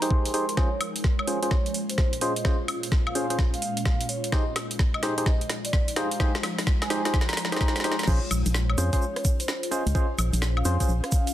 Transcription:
Already playing: ambient pad F3 G#3 D#4 A#4 G5
0.02 synth stab D#4 G4 G#4 C5, closed hi-hat
0.10 vibraphone C6, kick
0.25 closed hi-hat
0.34 synth stab D#4 G4 G#4 C5, vibraphone C6, open hi-hat
0.49 closed hi-hat
0.57 ambient pad A#2 C#4 F4 C5, synth stab C#4 F4 G#4 C5, vibraphone C#5, kick, snare
0.81 open hi-hat, high woodblock
0.96 closed hi-hat
1.04 kick, snare
1.19 vibraphone C#5, high woodblock
1.27 synth stab C#4 F4 G#4 C5, open hi-hat
1.43 synth stab C#4 F4 G#4 C5, closed hi-hat
1.51 vibraphone C#5, kick, snare
1.66 closed hi-hat
1.74 open hi-hat
1.89 vibraphone C5, closed hi-hat
1.98 kick, snare
2.13 closed hi-hat
2.21 synth stab C#4 F4 G#4 C5, vibraphone D#5, open hi-hat
2.36 closed hi-hat
2.45 synth stab C#4 F4 G#4 C5, kick, snare
2.68 open hi-hat, high woodblock
2.83 closed hi-hat
2.92 kick, snare
3.07 vibraphone F5, high woodblock
3.15 synth stab C#4 F4 G#4 C5, open hi-hat
3.30 synth stab C#4 F4 G#4 C5, closed hi-hat
3.39 kick, snare
3.54 vibraphone F5, closed hi-hat
3.62 open hi-hat
3.77 closed hi-hat
3.85 vibraphone F5, kick, snare
4.01 closed hi-hat
4.09 vibraphone C#5, open hi-hat
4.24 closed hi-hat
4.32 ambient pad F3 G#3 D#4 F4 C5, synth stab D#4 G4 G#4 C5, vibraphone D#5, kick, snare
4.56 snare, open hi-hat, high woodblock
4.71 closed hi-hat
4.79 kick, snare
4.94 vibraphone D#5, high woodblock
5.03 synth stab D#4 G4 G#4 C5, snare, open hi-hat
5.18 synth stab D#4 G4 G#4 C5, closed hi-hat
5.26 vibraphone D#5, kick, snare
5.41 closed hi-hat
5.50 snare, open hi-hat
5.65 vibraphone D5, closed hi-hat
5.73 kick, snare
5.88 closed hi-hat
5.96 synth stab D#4 G4 G#4 C5, vibraphone F5, snare, open hi-hat
6.11 closed hi-hat
6.20 synth stab D#4 G4 G#4 C5, kick, snare
6.35 snare
6.43 snare, open hi-hat, high woodblock
6.58 snare, closed hi-hat
6.67 kick, snare
6.82 vibraphone G#5, snare, closed hi-hat, high woodblock
6.90 synth stab D#4 G4 G#4 C5, snare, open hi-hat
7.05 synth stab D#4 G4 G#4 C5, snare, closed hi-hat
7.14 kick, snare
7.21 snare
7.28 vibraphone A#5, snare, closed hi-hat
7.33 snare
7.37 snare, open hi-hat
7.45 snare
7.52 synth stab D#4 G4 G#4 C5, snare, closed hi-hat
7.57 snare
7.61 vibraphone A#5, kick, snare
7.68 snare
7.76 snare, closed hi-hat
7.80 snare
7.84 synth stab D#4 G4 G#4 C5, vibraphone A#5, snare, open hi-hat
7.92 snare
7.99 snare, closed hi-hat
8.03 vibraphone C#5, snare, shaker
8.07 fm bass A#1, synth stab C#4 F4 G#4 C5, ambient pad C#4 F4 G#4 C5, kick, crash
8.31 fm bass A#1, open hi-hat, high woodblock, shaker
8.46 fm bass A#1, closed hi-hat, shaker
8.54 snare, shaker
8.69 vibraphone C#5, high woodblock
8.78 fm bass F2, synth stab C#4 F4 G#4 C5, open hi-hat, shaker
8.93 synth stab C#4 F4 G#4 C5, kick, closed hi-hat, shaker
9.01 vibraphone C#5, shaker
9.16 cross-stick, closed hi-hat
9.25 kick, open hi-hat, shaker
9.40 vibraphone C5, closed hi-hat, shaker
9.48 snare, shaker
9.63 closed hi-hat
9.71 synth stab C#4 F4 G#4 C5, vibraphone D#5, open hi-hat, shaker
9.86 fm bass C#2, closed hi-hat, shaker
9.95 synth stab C#4 F4 G#4 C5, kick, shaker
10.18 fm bass A#1, open hi-hat, high woodblock, shaker
10.33 fm bass A#1, closed hi-hat, shaker
10.42 snare, shaker
10.57 vibraphone F5, high woodblock
10.65 fm bass F2, synth stab C#4 F4 G#4 C5, open hi-hat, shaker
10.80 synth stab C#4 F4 G#4 C5, kick, closed hi-hat, shaker
10.88 fm bass A#1, shaker
11.04 vibraphone F5, cross-stick, closed hi-hat
11.12 kick, open hi-hat, shaker
11.27 closed hi-hat, shaker

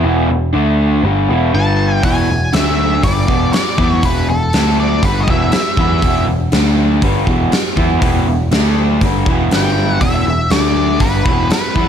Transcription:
0.04 picked electric bass E1, overdriven electric guitar E2 B2 E3
0.29 picked electric bass E1, overdriven electric guitar E2 B2
0.53 picked electric bass D2, overdriven electric guitar D3 A3 D4
1.03 picked electric bass G1, overdriven electric guitar G2 D3 G3
1.29 picked electric bass E1, overdriven electric guitar E2 B2 E3
1.53 picked electric bass G1, overdriven electric guitar G2 D3 G3, lead electric guitar A5
2.03 picked electric bass E1, overdriven electric guitar E2 B2 E3, lead electric guitar G#5, kick, open hi-hat
2.30 picked electric bass E1, overdriven electric guitar E2 B2
2.53 picked electric bass D2, overdriven electric guitar D3 A3 D4, lead electric guitar E5, snare, open hi-hat
3.03 picked electric bass G1, overdriven electric guitar G2 D3 G3, lead electric guitar D5, kick, open hi-hat
3.28 picked electric bass E1, overdriven electric guitar E2 B2 E3, kick
3.53 lead electric guitar D5, muted picked electric bass stroke, muted overdriven electric guitar stroke, snare, open hi-hat
3.78 picked electric bass E2, overdriven electric guitar E3 B3 E4, kick
3.91 lead electric guitar C#5
4.03 picked electric bass E1, overdriven electric guitar E2 B2 E3, lead electric guitar B4, kick, open hi-hat
4.29 picked electric bass E1, overdriven electric guitar E2 B2, lead electric guitar A4
4.53 picked electric bass D2, overdriven electric guitar D3 A3 D4, snare, open hi-hat
4.80 lead electric guitar D5
5.03 picked electric bass G1, overdriven electric guitar G2 D3 G3, lead electric guitar B4, kick, open hi-hat
5.20 lead electric guitar D#5
5.27 picked electric bass E1, overdriven electric guitar E2 B2 E3, lead electric guitar E5, kick
5.52 muted overdriven electric guitar stroke, muted picked electric bass stroke, snare, open hi-hat
5.77 picked electric bass E2, overdriven electric guitar E3 B3 E4, kick
6.02 picked electric bass E1, overdriven electric guitar E2 B2 E3, kick, open hi-hat
6.27 picked electric bass E1, overdriven electric guitar E2 B2
6.52 picked electric bass D2, overdriven electric guitar D3 A3 D4, snare, open hi-hat
7.02 picked electric bass G1, overdriven electric guitar G2 D3 G3, kick, open hi-hat
7.27 picked electric bass E1, overdriven electric guitar E2 B2 E3, kick
7.51 muted picked electric bass stroke, muted overdriven electric guitar stroke, snare, open hi-hat
7.76 picked electric bass E2, overdriven electric guitar E3 B3 E4, kick
8.01 picked electric bass E1, overdriven electric guitar E2 B2 E3, kick, open hi-hat
8.27 picked electric bass E1, overdriven electric guitar E2 B2
8.51 picked electric bass D2, overdriven electric guitar D3 A3 D4, snare, open hi-hat
9.01 picked electric bass G1, overdriven electric guitar G2 D3 G3, kick, open hi-hat
9.26 picked electric bass E1, overdriven electric guitar E2 B2 E3, kick
9.51 picked electric bass G1, overdriven electric guitar G2 D3 G3, lead electric guitar G5, snare, open hi-hat
9.92 lead electric guitar F#5
10.01 picked electric bass E1, overdriven electric guitar E2 B2 E3, lead electric guitar E5, kick, open hi-hat
10.26 picked electric bass E1, overdriven electric guitar E2 B2
10.50 picked electric bass D2, overdriven electric guitar D3 A3 D4, lead electric guitar D5, snare, open hi-hat
11.00 picked electric bass G1, overdriven electric guitar G2 D3 G3, lead electric guitar B4, kick, open hi-hat
11.25 picked electric bass E1, overdriven electric guitar E2 B2 E3, kick
11.51 lead electric guitar B4, muted overdriven electric guitar stroke, muted picked electric bass stroke, snare, open hi-hat
11.75 picked electric bass E2, overdriven electric guitar E3 B3 E4, kick

